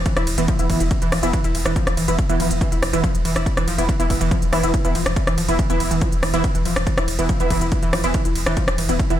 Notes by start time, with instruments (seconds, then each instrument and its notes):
0.06 synth arpeggio sound E3, kick, closed hi-hat, ride
0.17 sub bass E1, synth arpeggio sound E4, cross-stick, closed hi-hat
0.27 sub bass E1, open hi-hat, ride
0.38 sub bass E1, synth arpeggio sound E3, synth stab E3 B3 E4, closed hi-hat
0.48 synth arpeggio sound F3, kick, closed hi-hat, ride
0.59 sub bass E1, synth stab E3 B3 E4, closed hi-hat
0.70 sub bass E1, synth arpeggio sound E3, kick, open hi-hat, ride
0.80 sub bass E1, synth arpeggio sound E4, closed hi-hat
0.91 kick, closed hi-hat, ride
1.02 sub bass E1, synth arpeggio sound E3, closed hi-hat
1.12 sub bass E1, synth arpeggio sound F3, cross-stick, open hi-hat, ride
1.23 sub bass E1, synth stab E3 B3 E4, closed hi-hat
1.33 synth arpeggio sound E3, kick, closed hi-hat, ride
1.44 sub bass E1, synth arpeggio sound E4, closed hi-hat
1.55 sub bass E1, open hi-hat, ride
1.66 sub bass E1, synth arpeggio sound E3, cross-stick, closed hi-hat
1.76 synth arpeggio sound F3, kick, closed hi-hat, ride
1.87 sub bass E1, cross-stick, closed hi-hat
1.97 sub bass E1, synth arpeggio sound E3, open hi-hat, ride
2.08 sub bass E1, synth stab E3 B3 E4, synth arpeggio sound E4, closed hi-hat
2.19 kick, closed hi-hat, ride
2.29 sub bass E1, synth arpeggio sound E3, synth stab E3 B3 E4, closed hi-hat
2.40 sub bass E1, synth arpeggio sound F3, open hi-hat, ride
2.51 sub bass E1, closed hi-hat
2.61 synth arpeggio sound E3, kick, closed hi-hat, ride
2.72 sub bass E1, synth arpeggio sound E4, closed hi-hat
2.82 sub bass E1, cross-stick, open hi-hat, ride
2.93 sub bass E1, synth arpeggio sound E3, synth stab E3 B3 E4, closed hi-hat
3.04 synth arpeggio sound F3, kick, closed hi-hat, ride
3.15 sub bass E1, closed hi-hat
3.25 sub bass E1, synth arpeggio sound E3, open hi-hat, ride
3.36 sub bass E1, synth arpeggio sound E4, cross-stick, closed hi-hat
3.46 kick, closed hi-hat, ride
3.57 sub bass E1, synth arpeggio sound E3, cross-stick, closed hi-hat
3.68 sub bass E1, synth arpeggio sound F3, open hi-hat, ride
3.78 sub bass E1, synth stab E3 B3 E4, closed hi-hat
3.89 synth arpeggio sound E3, kick, closed hi-hat, ride
4.00 sub bass E1, synth stab E3 B3 E4, synth arpeggio sound E4, closed hi-hat
4.10 sub bass E1, kick, open hi-hat, ride
4.21 sub bass E1, synth arpeggio sound E3, closed hi-hat
4.31 synth arpeggio sound F3, kick, closed hi-hat, ride
4.42 sub bass E1, closed hi-hat
4.53 sub bass E1, synth stab E3 B3 E4, synth arpeggio sound E3, cross-stick, open hi-hat, ride
4.63 sub bass E1, synth stab E3 B3 E4, synth arpeggio sound E4, closed hi-hat
4.74 kick, closed hi-hat, ride
4.85 sub bass E1, synth arpeggio sound E3, synth stab E3 B3 E4, closed hi-hat
4.95 sub bass E1, synth arpeggio sound F3, open hi-hat, ride
5.06 sub bass E1, cross-stick, closed hi-hat
5.16 kick, closed hi-hat, ride
5.27 sub bass E1, synth arpeggio sound E3, cross-stick, closed hi-hat
5.38 sub bass E1, synth arpeggio sound F3, open hi-hat, ride
5.49 sub bass E1, synth stab E3 B3 E4, closed hi-hat
5.59 synth arpeggio sound E3, kick, closed hi-hat, ride
5.70 sub bass E1, synth stab E3 B3 E4, synth arpeggio sound E4, closed hi-hat
5.80 sub bass E1, open hi-hat, ride
5.91 sub bass E1, synth arpeggio sound E3, closed hi-hat
6.01 synth arpeggio sound F3, kick, closed hi-hat, ride
6.12 sub bass E1, closed hi-hat
6.23 sub bass E1, synth arpeggio sound E3, cross-stick, open hi-hat, ride
6.34 sub bass E1, synth stab E3 B3 E4, synth arpeggio sound E4, closed hi-hat
6.44 kick, closed hi-hat, ride
6.55 sub bass E1, synth arpeggio sound E3, closed hi-hat
6.65 sub bass E1, synth arpeggio sound F3, open hi-hat, ride
6.76 sub bass E1, cross-stick, closed hi-hat
6.87 synth arpeggio sound E3, kick, closed hi-hat, ride
6.98 sub bass E1, synth arpeggio sound E4, cross-stick, closed hi-hat
7.08 sub bass E1, open hi-hat, ride
7.19 sub bass E1, synth arpeggio sound E3, synth stab E3 B3 E4, closed hi-hat
7.29 synth arpeggio sound F3, kick, closed hi-hat, ride
7.40 sub bass E1, synth stab E3 B3 E4, closed hi-hat
7.50 sub bass E1, synth arpeggio sound E3, kick, open hi-hat, ride
7.61 sub bass E1, synth arpeggio sound E4, closed hi-hat
7.72 kick, closed hi-hat, ride
7.83 sub bass E1, synth arpeggio sound E3, closed hi-hat
7.93 sub bass E1, synth arpeggio sound F3, cross-stick, open hi-hat, ride
8.04 sub bass E1, synth stab E3 B3 E4, closed hi-hat
8.14 synth arpeggio sound E3, kick, closed hi-hat, ride
8.25 sub bass E1, synth arpeggio sound E4, closed hi-hat
8.35 sub bass E1, open hi-hat, ride
8.46 sub bass E1, synth arpeggio sound E3, cross-stick, closed hi-hat
8.57 synth arpeggio sound F3, kick, closed hi-hat, ride
8.68 sub bass E1, cross-stick, closed hi-hat
8.78 sub bass E1, synth arpeggio sound E3, open hi-hat, ride
8.89 sub bass E1, synth stab E3 B3 E4, synth arpeggio sound E4, closed hi-hat
8.99 kick, closed hi-hat, ride
9.10 sub bass E1, synth arpeggio sound E3, synth stab E3 B3 E4, closed hi-hat